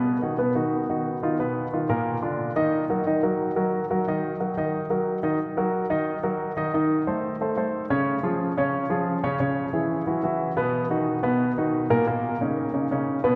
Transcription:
X:1
M:4/4
L:1/8
Q:1/4=180
K:Ebm
V:1 name="Grand piano"
[C,Cc] [^D,^D^F] [=B,,=B,=B] [D,DF]2 [D,DF]2 [D,D=F] | [=B,,=B,=B]2 [^D,^D^E] [^A,,^A,^A]2 [=D,=DF]2 [_E,_Ee]- | [E,Ee] [G,GB] [E,Ee] [G,GB]2 [G,GB]2 [G,GB] | [E,Ee]2 [G,GB] [E,Ee]2 [G,GB]2 [E,Ee] |
z [G,GB]2 [E,Ee]2 [G,GB]2 [E,Ee] | [E,Ee]2 [=A,=A=c]2 [A,Ac] [A,Ac]2 [D,Dd]- | [D,Dd] [F,FA]2 [D,Dd]2 [F,FA]2 [D,Dd] | [D,Dd]2 [_F,_FA]2 [=E,=E^F] [E,EF]2 [=B,,=B,=B]- |
[=B,,=B,=B] [^D,^D^F]2 [B,,B,B]2 [D,DF]2 [_B,,_B,_B] | [B,,B,B]2 [D,DE]2 [D,DE] [D,DE]2 [C,Cc] |]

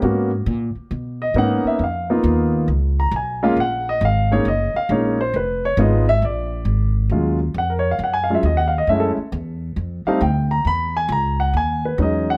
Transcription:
X:1
M:4/4
L:1/16
Q:"Swing" 1/4=136
K:F#
V:1 name="Grand piano"
z8 z2 d2 f2 =e2 | e4 z6 a2 g2 e2 | f2 d2 e2 c2 d2 e2 c2 ^B2 | _c2 ^c2 _e2 =e2 =d6 z2 |
[K:Ebm] z4 g B d f g a f _f e g =f e | _f =A z8 =f2 =g2 b2 | =b2 ^g2 _b2 ^f2 g2 =B2 ^d2 f2 |]
V:2 name="Grand piano"
[A,B,CF]2 z8 z2 [A,B,CD]4 | z2 [A,B,DE]6 z6 [G,A,CE]2 | z6 [G,A,CD]2 z4 [G,A,CD]2 z2 | z4 [_A,_C_E=F]2 z8 z2 |
[K:Ebm] [G,A,DF]2 z8 [G,A,DF]2 z4 | [A,=A,D_F]2 z8 [=G,A,=CE]2 z4 | z12 [^F,^G,^C^D]4 |]
V:3 name="Upright bass" clef=bass
G,,4 A,,2 z2 B,,4 G,,2 z2 | E,,4 D,,4 C,,4 B,,,4 | A,,,4 G,,,4 F,,,2 z2 A,,,4 | =F,,,4 _A,,,4 ^A,,,4 G,,,4 |
[K:Ebm] E,,4 F,,4 G,,4 E,,4 | G,,2 z2 _F,,4 =F,,2 z2 =D,,4 | =E,,4 ^C,,4 ^D,,4 E,,4 |]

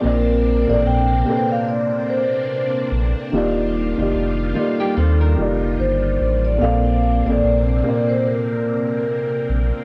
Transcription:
X:1
M:4/4
L:1/16
Q:"Swing 16ths" 1/4=73
K:Bb
V:1 name="Vibraphone"
B3 d g3 f d2 c4 z2 | z12 c3 d | f3 d4 c B6 z2 |]
V:2 name="Nylon-string guitar"
z16 | z6 [A,F] [B,G] [CA] [DB]6 z | z16 |]
V:3 name="Felt piano"
[B,,B,CBd]2 z [B,,B,CAd]2 z [B,,B,CA_c=c]4- [B,,B,CA_c=c] z4 z | [E,B,FGd]2 z [E,B,FGd]2 z [E,B,FGd]2 z2 [E,B,FGd]4 z2 | [B,,B,CAd]2 z [B,,B,CAd]2 z [B,,B,CBd]4- [B,,B,CBd] z4 z |]
V:4 name="String machine"
[C,B,CD]16 | [E,G,F]16 | [C,B,C]16 |]
V:5 name="Sub bass" clef=bass
B,,,3 A,,, B,,,2 z8 B,,, z | E,,,3 F,,, F,,,2 z2 E,,2 F,,,2 G,,,2 A,,,2 | B,,,3 A,,, B,,,2 z8 B,,, z |]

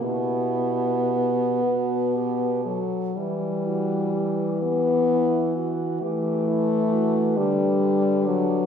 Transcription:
X:1
M:6/8
L:1/8
Q:3/8=42
K:Em
V:1 name="French horn"
G3 B2 z | B6 | B6 |]
V:2 name="French horn"
E2 z F G A | E F G G E F | G E F G3 |]
V:3 name="French horn" clef=bass
B,4- B, F, | G,3 B,2 z | A,3 G,2 F, |]
V:4 name="French horn" clef=bass
B,,3 B,,2 z | E,6 | E,3 D,3 |]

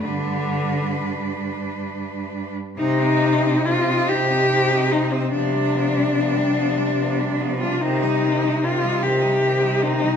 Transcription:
X:1
M:6/8
L:1/16
Q:3/8=48
K:Cm
V:1 name="Cello"
=B8- B3 z | E4 F2 G4 E C | D8- D3 F | E4 F2 G4 E2 |]
V:2 name="Cello"
D8- D3 z | C E C E C E C E C E C E | =B, D B, D B, D B, D B, D B, D | C E C E C E C E C E C E |]
V:3 name="Cello" clef=bass
D,6 z6 | E C E C E C E C E C E C | F, G, F, G, F, G, F, G, F, G, F, G, | E, G, E, G, E, G, E, G, E, G, E, G, |]
V:4 name="Cello" clef=bass
G,,8- G,,3 z | C,6 C,6 | C,6 C,6 | C,6 C,6 |]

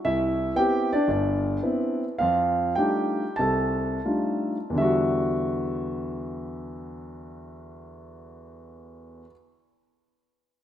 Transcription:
X:1
M:4/4
L:1/8
Q:"Swing" 1/4=82
K:Em
V:1 name="Grand piano"
[Ee]2 [Gg] [Dd] [Dd]3 z | [=F=f]2 [Gg]2 [Aa]3 z | [E,,D,G,Fe]8- | [E,,D,G,Fe]8 |]
V:2 name="Grand piano"
C,,2 [B,CE] z G,,,2 [B,CE] z | =F,,2 [G,A,D_E=F] z [C,,C,]2 [G,A,DEF] z | z8 | z8 |]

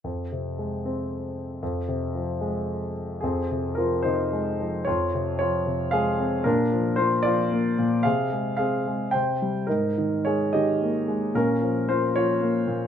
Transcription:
X:1
M:3/4
L:1/16
Q:1/4=111
K:Fm
V:1 name="Grand piano"
z12 | z12 | [CA]4 [FB]2 [Ec]6 | [Fd]4 [Fd]4 [Af]3 z |
[=DB]4 [Fc]2 [F=d]6 | [Af]4 [Af]4 [cg]3 z | [EB]4 [Ad]2 [Ge]6 | [DB]4 [Fc]2 [Fd]6 |]
V:2 name="Grand piano" clef=bass
F,,2 C,2 A,2 C6 | F,,2 C,2 F,2 A,6 | F,,2 C,2 F,2 C,2 A,2 F,2 | F,,2 C,2 F,2 C,2 A,2 C2 |
B,,2 F,2 B,2 F,2 B,2 B,,2 | C,2 A,2 C2 A,2 C,2 G,2 | A,,2 E,2 A,2 E,2 B,2 A,2 | B,,2 F,2 B,2 F,2 B,2 B,,2 |]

